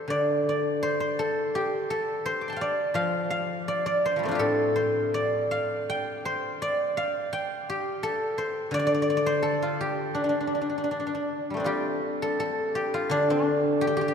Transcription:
Already playing: G4 A4 C5
0.08 D3 D5
0.49 D5
0.83 C5
1.00 C5
1.19 A4
1.55 G4
1.90 A4
2.26 C5
2.41 D6
2.48 A5 C6
2.52 F5 G5
2.61 D5
2.94 F3 F5
3.30 F5
3.68 D5
3.86 D5
4.06 C5
4.16 F3 G3
4.23 A3 C4
4.28 D4 F4
4.35 G4
4.39 A2 A4
4.76 C5
5.14 D5
5.51 F5
5.90 G5
6.25 C5
6.62 D5
6.97 F5
7.33 G5
7.70 G4
8.03 A4
8.38 C5
8.71 D3 D5
8.79 D5
8.87 D5
8.94 D5
9.02 D5
9.10 D5
9.17 D5
9.26 C5
9.43 A4
9.62 F4
9.81 G4
10.15 D4
10.24 D4
10.29 D4
10.41 D4
10.47 D4
10.55 D4
10.61 D4
10.70 D4
10.78 D4
10.84 D4
10.91 D4
11.00 D4
11.07 D4
11.15 D4
11.50 G3 A3
11.57 C4 D4
11.64 G3 F4 G4
12.22 A4
12.40 A4
12.75 G4
12.94 F4
13.10 D3 D4
13.30 D4
13.81 G4
13.87 G4
13.97 G4
14.01 G4
14.08 G4

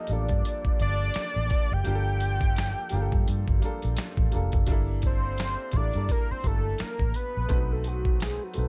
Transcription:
Already playing: F3 G3 A#3 D4 F4 G4 A4 D#5
0.07 A1 G3 A#3 D4 F4, closed hi-hat
0.11 A4 D5
0.29 G2, kick, closed hi-hat
0.45 closed hi-hat
0.65 muted fingered electric bass stroke, kick
0.80 G1 D5, closed hi-hat
1.14 finger snap, snare, closed hi-hat
1.36 A1
1.50 kick, closed hi-hat
1.72 F#1 G5
1.84 G1 G3 A#3 D4 F4, closed hi-hat
1.88 G4
1.95 A4
2.20 closed hi-hat
2.40 kick, closed hi-hat
2.56 finger snap, snare, closed hi-hat
2.89 G1 G3 A#3 D4, closed hi-hat
2.94 F4 G4
3.02 A4
3.12 G2, kick
3.28 G2, closed hi-hat
3.48 G1, kick
3.60 G3 A#3 D4, closed hi-hat
3.64 F4 A4
3.82 A#1, closed hi-hat
3.97 finger snap, snare, closed hi-hat
4.17 A1, kick
4.31 F1 G3 A#3 D4 F4, closed hi-hat
4.36 A4
4.52 F#1, kick, closed hi-hat
4.66 G1 G3 A#3 D4, kick, closed hi-hat
4.71 E4 A4
5.02 kick, closed hi-hat
5.06 C5
5.38 finger snap, snare, closed hi-hat
5.71 A1 G3 A#3 D4, kick, closed hi-hat
5.76 E4 A4 D5
5.93 G2 G3 A#3 D4 E4, closed hi-hat
5.97 A4
6.09 A#4, kick, closed hi-hat
6.31 C5, muted fingered electric bass stroke
6.43 G1 G3 A#3 D4 E4 A4, kick, closed hi-hat
6.48 A5
6.78 A#4, finger snap, muted fingered electric bass stroke, snare, closed hi-hat
6.99 A1, kick
7.14 B4, closed hi-hat
7.37 A#1
7.48 B1 A3 C4 D4 F#4, kick, closed hi-hat
7.53 B4
7.57 D#4
7.72 A4
7.84 F#4, closed hi-hat
8.05 kick
8.20 G#4, finger snap, snare, closed hi-hat
8.43 F#4
8.54 A3 C4 D#4 A4, closed hi-hat
8.58 B1 F#4 B4

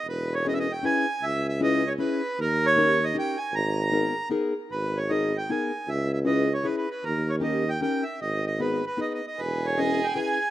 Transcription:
0.07 E1 B4
0.34 C#5
0.45 C#4 E4 G#4 B4 D#5
0.54 E5
0.59 D#5
0.72 G5
0.83 C#4 E4 G#4 B4 G#5
1.23 C#2 E5
1.49 E5
1.60 C#4 E4 G#4 B4 D#5
1.87 C#5
1.98 C#4 E4 G#4 B4
2.39 D#2 A#4
2.66 C#5
2.76 C#4 D#4 G4 A#4
3.04 D#5
3.14 C#4 D#4 G4 A#4
3.19 G5
3.38 G#5
3.53 G#1 A#5
3.91 B3 D#4 G#4 A#4
4.30 B3 D#4 G#4 A#4
4.72 G#1 B4
4.97 C#5
5.09 B3 D#4 G#4 A#4 D#5
5.37 G5
5.49 B3 D#4 G#4 A#4 G#5
5.88 C#2 E5
6.13 E5
6.25 C#4 E4 G#4 B4 D#5
6.54 C#5
6.63 C#4 E4 G#4 B4
6.77 B4
6.91 B4
7.04 D#2 A#4
7.30 C#5
7.40 C#4 D#4 G4 A#4 D#5
7.69 G5
7.81 C#4 D#4 G4 A#4 G5
8.03 E5
8.21 G#1 D#5
8.47 D#5
8.60 B3 D#4 G#4 B4
8.87 B4
8.97 B3 D#4 G#4 B4 D#5
9.14 D#5
9.27 D#5
9.39 E1 G#4 B4
9.66 C#5
9.78 C#4 E4 G#4 B4 D#5
10.04 G5
10.14 C#4 E4 G#4 B4 G#5

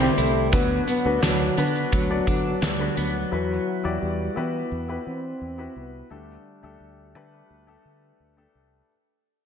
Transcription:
Already playing: E3 C4 E4 G4 A4
0.00 G3 C4 E4 G4
0.18 C2 A3 E4, closed hi-hat
0.52 D2 D3 F#3 B3 D4 F#4 B4, kick, closed hi-hat
0.87 B3, closed hi-hat
1.05 D2 B3 D4 F#4 B4
1.22 D2 F#3 D4, snare, closed hi-hat
1.57 D3 B3 D4 F#4 B4, closed hi-hat
1.75 closed hi-hat
1.92 D2 F#3, kick, closed hi-hat
2.10 B3 D4 F#4 D5
2.27 D3 D4, kick, closed hi-hat
2.62 D2 F#3 G3, snare, closed hi-hat
2.79 B3 D4 F#4 B4
2.97 D2 F#3 B3, closed hi-hat
3.31 E2 E3 E4 F#4 B4
3.84 E2 E4 F#4 G4 D5
4.01 E2 G3
4.36 E3 B3 E4 F#4 G4 B4
4.72 E2
4.88 E4 F#4 G4 B4
5.06 E3 C4
5.41 E2
5.58 E4 F#4 G4 B4
5.76 C2 B3
6.10 D2 D3 G3 A3 D4 G4 A4
6.63 D2 A3 D4 G4 A4
6.80 D2
7.15 D3 A3 D4 G4 B4
7.50 D2
7.67 A3 D4 G4 A4
7.85 D3
8.20 D2
8.37 A3 D4 G4 A4
8.55 C2

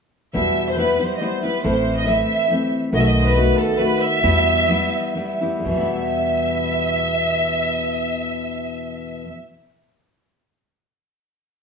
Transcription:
0.33 E2 B2 E3 G3 B3 E4 E5
0.70 C5
0.77 E3 G3 B3 E4 B4
0.99 E3 G3 B3 E4 C5
1.17 E3 G3 D#5
1.21 B3 E4 C5
1.43 E3 G3 B3 E4 B4
1.64 A1 A2 E3 A3 C4 E4 C5
1.99 D#5
2.06 E3 A3 C4 E4 E5
2.50 E3 A3 C4 E4
2.92 B1 B2 D#3 A3 B3 F#4 D#5
3.00 E5
3.08 D#5
3.19 C5
3.24 B4
3.36 D#3 A3 B3 F#4
3.58 A4
3.78 D#3 A3 B3 F#4 B4
4.00 E5
4.23 E2 B2 E3 G3 B3 E4
4.69 E3 G3 B3 E4
5.16 E3 G3 B3 E4
5.41 E3 G3 B3 E4
5.59 E2
5.65 E2 B2 E5
5.69 E3
5.73 G3 B3
5.80 E4

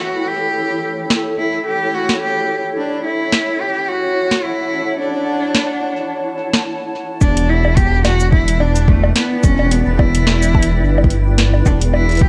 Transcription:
Already playing: E4 A4 B4 C#5 G5
0.00 F#4
0.27 G4
1.10 snare
1.38 E4
1.66 G4
1.94 F#4
2.09 snare
2.21 G4
2.77 D4
3.05 E4
3.32 snare
3.45 F#5
3.61 G4
3.88 F#4
4.15 A5
4.31 snare
4.44 E4
4.99 D4
5.55 snare
6.53 snare
7.21 E1 D4 E4, kick, cabasa
7.37 closed hi-hat
7.49 E4 D5
7.65 B4, high bongo
7.77 G4, kick, closed hi-hat
7.88 G5
8.05 F#4, snare, closed hi-hat, high bongo
8.20 cabasa
8.32 E4, kick
8.48 closed hi-hat
8.60 D4, high bongo
8.76 closed hi-hat, cabasa
8.88 A3, kick
9.04 high bongo
9.16 B3, snare, closed hi-hat
9.44 E1 C#4, kick, closed hi-hat, cabasa
9.59 high bongo
9.71 B3, closed hi-hat
9.87 E1
9.99 E4, kick, high bongo
10.15 closed hi-hat
10.27 snare
10.43 closed hi-hat, cabasa
10.55 kick, high bongo
10.63 closed hi-hat
10.82 G1
10.98 high bongo
11.04 kick
11.10 closed hi-hat
11.38 snare, closed hi-hat
11.54 high bongo
11.66 E1 D4, kick, cabasa
11.81 closed hi-hat
11.94 E4, high bongo
12.09 closed hi-hat
12.11 closed hi-hat
12.15 closed hi-hat
12.17 closed hi-hat
12.19 G4, kick, closed hi-hat

